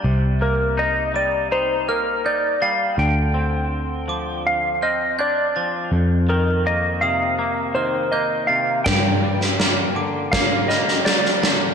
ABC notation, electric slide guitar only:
X:1
M:4/4
L:1/16
Q:1/4=82
K:Gm
V:1 name="Electric slide guitar"
z2 B2 e2 d2 c2 B2 d2 f2 | g8 f2 e2 d3 z | z2 B2 e2 f4 c2 e2 f2 | g8 f2 e2 d3 z |]